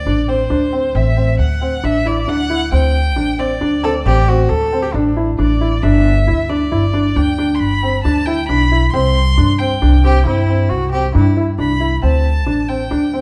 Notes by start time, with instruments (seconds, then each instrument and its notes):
Already playing: violin D5
0.06 upright bass A1, felt piano D4
0.28 felt piano C4, violin C5
0.50 upright bass D2, felt piano D4
0.73 felt piano C4
0.95 upright bass A1, felt piano C4, violin E5
1.17 felt piano C4
1.39 upright bass D2, violin F#5
1.61 felt piano C4
1.83 upright bass A1, felt piano D4, violin E5
2.06 felt piano E4, violin D5
2.28 upright bass D2, felt piano D4, violin F#5
2.50 felt piano E4
2.72 upright bass D2, felt piano C4, violin G5
3.16 upright bass A1, felt piano D4
3.39 felt piano C4, violin D5
3.61 upright bass D2, felt piano D4
3.83 felt piano C4, cello A4
4.05 upright bass A1, felt piano C4, cello G4
4.28 felt piano C4, cello F#4
4.50 upright bass D2, cello A4
4.72 felt piano C4
4.83 cello G4
4.94 upright bass A1, cello D4, felt piano D4
5.17 felt piano E4
5.39 upright bass A1, felt piano D4, violin D5
5.61 felt piano E4
5.83 upright bass G1, felt piano D4, violin E5
6.27 upright bass D2, felt piano E4
6.49 felt piano D4, violin D5
6.71 upright bass G1, felt piano E4
6.94 felt piano D4
7.16 upright bass D2, felt piano D4, violin G5
7.38 felt piano D4
7.55 violin C6
7.59 upright bass G1, violin B5
7.83 felt piano C4
8.03 upright bass D2, felt piano D4, violin A5
8.26 felt piano E4, violin G5
8.48 upright bass B1, felt piano D4, violin B5
8.71 felt piano E4
8.92 upright bass C2, felt piano C4, violin C6
9.38 upright bass G2, felt piano D4
9.59 felt piano C4, violin G5
9.82 upright bass C2, felt piano D4
10.04 felt piano C4, cello G4
10.26 upright bass G2, felt piano C4, cello E4
10.49 felt piano C4
10.69 upright bass C2, cello F#4
10.91 felt piano C4, cello G4
11.15 upright bass G2, felt piano D4, cello E4
11.37 felt piano E4
11.58 upright bass C2, felt piano D4, violin B5
11.80 felt piano E4
12.02 upright bass D2, felt piano C4, violin A5
12.46 upright bass A1, felt piano D4
12.68 felt piano C4, violin G5
12.91 upright bass D2, felt piano D4
13.13 felt piano C4